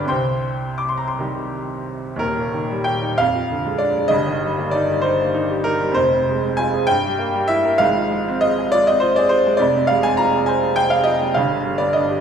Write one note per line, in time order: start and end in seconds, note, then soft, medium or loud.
0.00 0.13 G1 medium
0.00 0.12 G2 medium
0.00 0.12 D3 medium
0.00 0.12 G3 medium
0.00 0.12 G4 medium
0.00 0.12 B4 medium
0.00 0.12 D5 medium
0.00 0.09 G5 medium
0.00 0.13 B5 loud
0.00 0.13 D6 medium
0.05 2.15 C3 medium
0.05 0.73 G5 medium
0.05 0.76 C6 medium
0.09 2.18 C2 medium
0.09 0.73 C5 medium
0.78 0.88 D6 medium
0.89 0.98 C6 medium
0.97 1.08 A#5 medium
1.08 1.18 C6 medium
1.19 2.18 D#3 soft
1.19 2.18 G3 soft
1.19 2.18 G4 medium
2.16 3.13 D#2 medium
2.16 2.86 A#4 medium
2.21 3.16 D#1 medium
2.37 2.64 A#2 soft
2.53 2.80 D#3 soft
2.70 2.96 G3 medium
2.84 3.13 G4 medium
2.84 3.18 G5 medium
3.03 3.19 D#4 medium
3.18 4.09 F2 medium
3.18 3.81 F5 loud
3.35 3.60 F3 soft
3.51 3.75 D3 medium
3.65 3.90 G#3 medium
3.78 4.05 D4 medium
3.78 4.10 D5 medium
3.96 4.11 G#3 medium
4.08 5.91 G1 medium
4.08 5.91 G2 medium
4.08 4.71 D#5 loud
4.27 4.51 D#3 medium
4.43 4.67 G3 medium
4.58 4.83 A#3 medium
4.71 4.98 D#4 medium
4.71 5.03 D5 medium
4.89 5.13 G4 medium
5.02 5.28 D#4 medium
5.02 5.63 C5 loud
5.21 5.44 A#3 medium
5.34 5.58 D#4 medium
5.50 5.74 G4 medium
5.64 5.90 D#4 medium
5.64 5.95 A#4 loud
5.81 5.96 G3 medium
5.92 6.85 F1 medium
5.92 6.83 F2 medium
5.92 6.57 C5 loud
6.12 6.36 C3 medium
6.29 6.53 G#3 medium
6.44 6.68 C4 medium
6.57 6.83 F4 medium
6.57 6.88 G#5 loud
6.74 6.89 G#4 medium
6.87 7.78 G2 medium
6.87 7.48 G5 loud
7.05 7.29 G3 soft
7.19 7.43 A#3 medium
7.34 7.59 G3 medium
7.48 7.74 E4 medium
7.48 7.80 E5 loud
7.65 7.81 A#4 medium
7.78 9.56 G#1 medium
7.78 9.56 G#2 medium
7.78 8.41 F5 loud
7.97 8.21 F3 medium
8.11 8.36 G#3 medium
8.28 8.52 C4 medium
8.41 8.67 F4 medium
8.41 8.72 D#5 loud
8.58 8.82 G#4 medium
8.72 8.97 F4 medium
8.72 8.87 D5 loud
8.87 9.12 C4 medium
8.87 9.02 D#5 medium
9.00 9.26 F4 medium
9.00 9.16 C5 loud
9.16 9.41 G#4 medium
9.16 9.31 D5 loud
9.29 9.54 F4 medium
9.29 9.59 C5 loud
9.47 9.61 G#3 medium
9.57 11.31 F1 medium
9.57 11.32 F2 medium
9.57 9.88 D5 loud
9.75 9.98 C3 medium
9.87 10.13 G#3 medium
9.87 10.03 F5 loud
10.03 10.27 C4 medium
10.03 10.18 G#5 loud
10.17 10.42 F4 medium
10.17 10.47 A#5 loud
10.34 10.57 G#4 medium
10.46 10.71 C5 medium
10.46 10.76 G#5 medium
10.63 10.87 G#4 soft
10.76 11.01 C5 medium
10.76 10.91 G5 loud
10.90 11.16 G#4 medium
10.90 11.06 F5 medium
11.04 11.30 F4 medium
11.04 11.35 D#5 loud
11.21 11.36 G#3 soft
11.34 12.21 G1 medium
11.34 12.21 G2 medium
11.34 11.79 F5 medium
11.51 11.75 D3 medium
11.65 11.89 G3 soft
11.78 12.03 B3 medium
11.78 11.94 D5 medium
11.93 12.19 D4 soft
11.93 12.21 D#5 medium
12.11 12.21 G4 soft